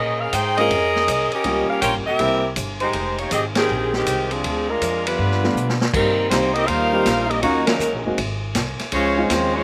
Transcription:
Already playing: A#2 C#4 G#4 A#4 D#5
0.20 C#4 G#4 A#4 F5
0.33 G#2 D#4 G#4 C5 G5, kick, hi-hat pedal, ride
0.57 G#3 A#3 C4 C#4 F4 G#4 A#4 D#5, ride
0.70 F2, kick, ride
0.96 snare
1.08 C2, kick, hi-hat pedal, ride
1.32 C#4 G4 A#4 D#5, ride
1.44 C#2 G3 A#3 C#4 F4 G4, kick, ride
1.70 C#4 G4 A#4 F5
1.82 A#1 F4 A#4 C#5 G5, kick, hi-hat pedal, ride
1.94 G1
2.06 F1 C4 G4 A#4 E5
2.19 C2 G3 A#3 C4 E4 G4, kick, ride
2.56 G1, kick, hi-hat pedal, ride
2.80 G#3 D#4 G4 C5, ride
2.93 F1, kick, ride
3.18 A#3 D#4 G4 C#5, ride
3.31 G#1 C4 G4 G#4 D#5, kick, hi-hat pedal, ride
3.55 D#3 C4 G4 G#4, snare, ride
3.69 A#1
3.93 D#3 G#3 C4 G4, snare
4.06 C2, kick, hi-hat pedal, ride
4.31 F3 C4 D4 G#4, ride
4.44 D2, kick, ride
4.69 G#3 D4 F4 A#4
4.81 F2, kick, hi-hat pedal, ride
5.06 D3 F3 G3 B3 D4 F4 B4, ride
5.19 G2, kick
5.32 snare
5.44 G3 A3 B3 D4 F4, snare
5.55 B2, hi-hat pedal
5.69 snare
5.81 snare
5.92 G2 D#3 G3 A#3 C4 D#4 A#4, kick, crash
6.29 C2 D#3 G3 A#3 C4 D#4 G4 C5, kick, snare, hi-hat pedal, ride
6.53 G3 A#3 C4 D#4 G4 A#4 D#5, ride
6.66 D#2 G3 A#3 D#4 F4 A#4 C5 F5, kick, ride
6.93 G3 A#3 C4 D#4 G4
7.06 A#1, kick, snare, hi-hat pedal, ride
7.28 G3 A#3 C4 D#4 G4 A#4 D#5, ride
7.42 D#2 F#3 A#3 C#4 D#4 F4 F#4 C#5, kick, ride
7.66 C#3 F#3 A#3 C#4 D#4 A#4, snare, ride
7.79 C#2, hi-hat pedal
7.92 A#1
8.05 F#1 G#3 A#3 C4 D#4 F#4
8.18 G#1, kick, ride
8.55 C2, kick, snare, hi-hat pedal, ride
8.79 snare, ride
8.92 C#2 F3 G#3 C#4 F4 C5 C#5, kick, ride
9.17 G#3 C4 C#4 D#4 F4
9.29 D#2 F3 G#3 C4 C#4 F4 C5, kick, snare, hi-hat pedal, ride
9.54 F3 G#3 C#4 F4 C5 C#5

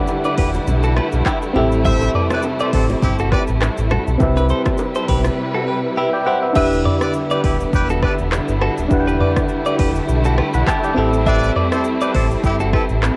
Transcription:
Already playing: D3 G3 A3 D4 E4 G4 B4 F#5
0.07 high bongo, shaker
0.24 B4 D5, shaker
0.38 E1 G4 B4, kick, open hi-hat, high bongo
0.54 low bongo, shaker
0.67 B1, low conga, shaker
0.83 F#4 A4, shaker
0.97 G4 B4, cross-stick, low bongo
1.12 B1, shaker
1.26 E4 G4, kick, cross-stick, clap, high bongo, shaker
1.42 shaker
1.53 A1 C3 C4 E4 G4 A4, low conga
1.58 E5
1.72 shaker
1.85 A4 C5 E5, kick, low conga, shaker
2.02 high bongo, shaker
2.15 B4 D5, mid tom
2.30 G4 B4 D5, cross-stick, low bongo, shaker
2.43 high bongo, shaker
2.60 G4 A4 B4 C5 D5, shaker
2.73 A1 C4 E4 A4 C5, kick, open hi-hat, high bongo
2.89 low bongo, shaker
3.02 G1 C4 E4 G4, kick, low conga, shaker
3.19 F#4 A4, shaker
3.32 G4 B4 D5, kick, cross-stick, low bongo
3.47 A1, shaker
3.61 cross-stick, clap, high bongo, shaker
3.77 A1, shaker
3.91 F#4 A4, cross-stick, low conga
4.07 B1, shaker
4.18 C2 C3 G3 C4 E4 G4 B4, kick, low conga, shaker
4.23 E5
4.37 G4 B4, high bongo, shaker
4.49 A4 C5, shaker
4.66 kick, cross-stick, low bongo, shaker
4.78 high bongo, shaker
4.95 A4 C5, shaker
5.08 B1 G4 B4, kick, open hi-hat, high bongo
5.24 cross-stick, low bongo, shaker
5.54 F#4 A4
5.68 G4 B4
5.97 E4 G4 B4 E5
6.13 D5 G5
6.26 E4 G4 C5 F#5
6.42 B4 E5
6.53 E1 D3 G3 B3 D4 E4 G4 B4 E5, kick, crash, shaker
6.58 E5
6.73 shaker
6.85 B4 D5, mid tom
7.01 G4 B4 D5, cross-stick, shaker
7.13 shaker
7.30 E4 G4 B4 D5, shaker
7.44 D1 D4 E4 G4 B4, kick, open hi-hat
7.60 shaker
7.73 E1 E4 G4 B4, kick, shaker
7.89 F#4 A4, shaker
8.02 G4 B4 D5, kick, cross-stick
8.18 E1, shaker
8.32 cross-stick, clap, shaker
8.48 G1, shaker
8.61 F#4 A4, cross-stick
8.78 D1, shaker
8.88 E1 A3 D4 E4 G4 B4, kick, shaker
8.93 F#5
9.00 G5
9.07 G4 B4, shaker
9.21 B4 D5, mid tom
9.36 kick, cross-stick, shaker
9.49 shaker
9.66 B4 D5, shaker
9.79 E1 G4 B4, kick, open hi-hat
9.95 shaker
10.09 B1, shaker
10.25 F#4 A4, shaker
10.38 G4 B4, cross-stick
10.54 B1 F#5 B5, shaker
10.67 E4 G4 E5 A5, kick, cross-stick, clap, shaker
10.84 D5 G5, shaker
10.94 A1 C4 E4 G4 A4
10.99 E5
11.13 shaker
11.26 G4 B4 C5 D5 E5, kick, shaker
11.44 shaker
11.56 B4 D5, mid tom
11.72 G4 A4 C5, cross-stick, shaker
11.84 shaker
12.01 E4 G4 B4 D5, shaker
12.15 A1 C4 E4 A4 C5, kick, open hi-hat
12.31 shaker
12.44 G1 C4 E4 G4, kick, shaker
12.60 F#4 A4, shaker
12.73 C4 E4 G4 A4 B4, kick, cross-stick
12.89 A1, shaker
13.03 cross-stick, clap, shaker

